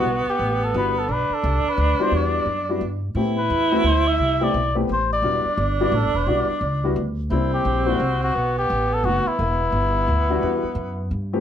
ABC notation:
X:1
M:3/4
L:1/8
Q:"Swing" 1/4=174
K:Em
V:1 name="Muted trumpet"
F G2 A B A | B A2 B2 c | d4 z2 | z B3 c e- |
e d2 z c d- | d3 d A B | d4 z2 | E G2 F2 F- |
F G2 A F E- | E6- | E4 z2 |]
V:2 name="Alto saxophone"
B,6 | D6- | D4- D z | E6- |
E4 z2 | D6- | D4- D z | C6 |
B,6 | B,6- | B,4- B, z |]
V:3 name="Upright piano"
z4 [G,B,DEF] z | z4 z [G,B,DEF]- | [G,B,DEF]2 z [G,B,DEF] z2 | [A,B,CEG] z2 [A,B,CEF] z2 |
z [A,B,CEG] z [A,B,CEG] z2 | [G,B,DEF] z2 [G,B,DEF] z2 | [G,B,DEF] z2 [G,B,DEF] z2 | [G,_B,CDE]3 [G,B,CDE] z2 |
z4 [F,A,B,^DF] z | z4 z [E,G,B,DF] | [E,G,B,DF] z4 [E,A,B,CG] |]
V:4 name="Upright bass" clef=bass
B,,, z A,,,2 G,,,2 | B,,, z C,, z D,, z | E,,2 F,,2 G,,2 | A,,2 E,,2 D,,2 |
C,,2 B,,,2 A,,,2 | E,,, z G,,,2 (3A,,, G,,, E,,, | B,,, z ^C,,2 D,,2 | C,,2 _B,,,2 C,,2 |
B,,,2 A,,,2 F,,, z | E,,,2 G,,,2 D,,2 | E,, z F,,2 G,,2 |]